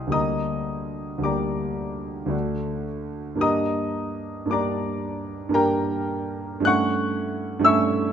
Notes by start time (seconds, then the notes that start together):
Already playing: C2 G3 C4 G4 D#5 C6 D#6
0.07 D2 G3 A#3
0.12 G4 D#5 A#5 D#6
1.18 D2 G3
1.22 A#3 G4 D5 A#5 D6
2.26 D2 A3 D4
2.31 F#4
3.35 G2 A#3 D4
3.40 G4 D#5 A#5 D#6
4.46 G2 A#3
4.50 D4 G4 D5 A#5 D6
5.49 G2 A#3 D4
5.54 G4 A#4 G5 A#5
6.60 G2 A3 C#4
6.65 E4 F#5 C#6 F#6
7.59 G2 A3
7.64 C#4 E4 E5 C#6 E6